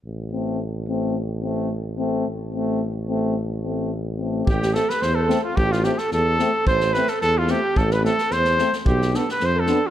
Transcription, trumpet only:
X:1
M:2/4
L:1/16
Q:"Swing 16ths" 1/4=109
K:Am
V:1 name="Trumpet"
z8 | z8 | z8 | z8 |
G2 A B c A2 F | G F G A A4 | c2 B A A F G2 | A B A2 c3 z |
G2 A B c A2 F |]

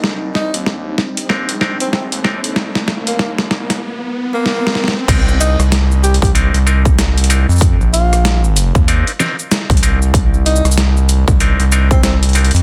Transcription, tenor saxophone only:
X:1
M:4/4
L:1/16
Q:"Swing 16ths" 1/4=95
K:Cm
V:1 name="Tenor saxophone"
z2 E z8 C C z3 | z3 B, B, z6 B,4 z | z2 E z3 G G z8 | z2 F3 z8 z3 |
z2 E z8 C C z3 |]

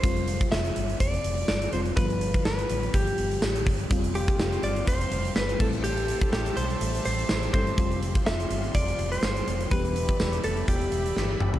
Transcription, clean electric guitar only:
X:1
M:4/4
L:1/16
Q:"Swing 16ths" 1/4=124
K:Flyd
V:1 name="Clean electric guitar"
c4 e4 d4 d2 c2 | B4 B4 G6 z2 | z2 G4 d2 c4 B2 A2 | G4 G2 c4 c4 c2- |
c2 z2 e4 d3 c4- c | B6 A2 G6 z2 |]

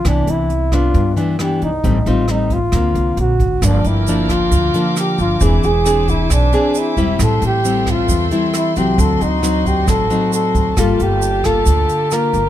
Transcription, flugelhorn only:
X:1
M:4/4
L:1/8
Q:1/4=134
K:Dm
V:1 name="Flugelhorn"
D E2 F2 z G _E- | _E F E F3 ^F2 | D E2 F3 G F | E ^G2 E D2 E2 |
A G2 F2 z E G | A _E2 G A2 A2 | F G2 A3 B2 |]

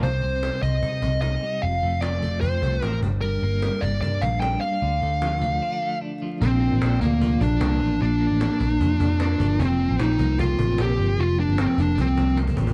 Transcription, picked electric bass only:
X:1
M:4/4
L:1/16
Q:1/4=151
K:Bb
V:1 name="Picked electric bass" clef=bass
C,,2 C,,3 z C,,2 C,2 C,,4 z2 | F,,,2 F,,,6 F,,2 C,,2 A,,,2 G,,,2- | G,,,2 G,,,3 z G,,,2 G,,2 B,,,4 z2 | D,,2 D,,6 z8 |
B,,,3 A,,, B,,,2 D,,4 B,,,2 C,,2 A,,,2 | B,,,3 A,,,2 z B,,,2 F,,2 F,,4 G,,,2 | F,,,3 A,,, B,,,2 C,,4 A,,,2 B,,,2 G,,,2 | F,,,3 G,,,2 z F,,,2 C,,2 C,,4 A,,,2 |]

